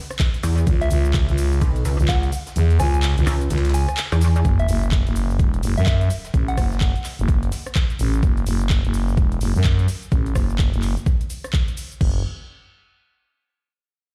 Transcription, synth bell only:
0.81 E5
2.09 F#5
2.80 G#5
2.94 G#5
3.74 G#5
4.59 E5
5.78 E5
5.87 E5
6.48 F#5

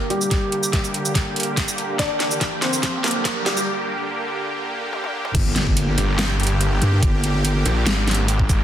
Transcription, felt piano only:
0.10 G3 G4
1.99 D4 D5
2.62 C4 C5
3.04 A#3 A#4
3.46 G3 G4

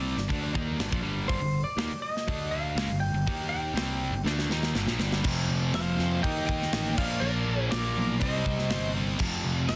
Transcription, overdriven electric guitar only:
Already playing: C3 G3 C4
0.17 G2 D3
0.28 D3 A3 D4
0.53 D#3 A#3 D#4
0.78 G2 D3
0.91 A#2 F3
1.02 G2 D3 G3
1.29 G2 D3
1.42 G2 D3
1.78 D#3 A#3
1.92 muted overdriven electric guitar stroke
2.28 D3 A3 D4
2.77 C#3 G#3
2.90 G2 D3
3.14 G2 D3
3.27 D#3 A#3 D#4
3.74 C3 G3 C4
4.13 G2 D3
4.26 D3 A3 D4
4.51 D#3 A#3 D#4
4.75 G2 D3
4.88 A#2 F3
5.01 G2 D3 G3
5.25 F2 C3 F3
6.24 D#3 A#3 D#4
6.98 A#2 F3 A#3
8.20 C3 G3
8.24 C4
9.18 F2 C3
9.23 F3

